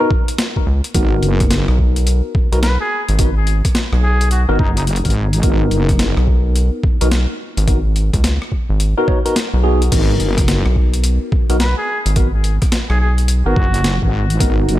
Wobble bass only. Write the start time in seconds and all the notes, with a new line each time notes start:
0.95 G#1
1.23 F#1
4.59 F#1
5.05 G#1
5.43 G#1
5.71 F#1
9.92 G#1
10.20 F#1
13.56 F#1
14.02 G#1
14.40 G#1
14.69 F#1